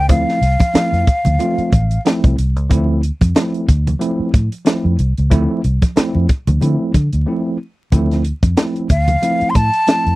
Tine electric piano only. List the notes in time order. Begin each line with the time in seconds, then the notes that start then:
0.08 F3 A3 C4 E4
0.73 F3 A3 C4 E4
1.39 F3 A3 C4 F4
2.05 F3 A3 C4 E4
2.70 F3 A3 C4 E4
3.36 F3 A3 C4 E4
4.00 F3 A3 C4 E4
4.65 F3 A3 C4 E4
5.30 F3 A3 C4 E4
5.96 F3 A3 C4 E4
6.61 F3 A3 C4 E4
7.26 F3 A3 C4 E4
7.92 F3 A3 C4 E4
8.57 F3 A3 C4 E4
9.22 F3 A3 C4 E4
9.87 F3 A3 C4 E4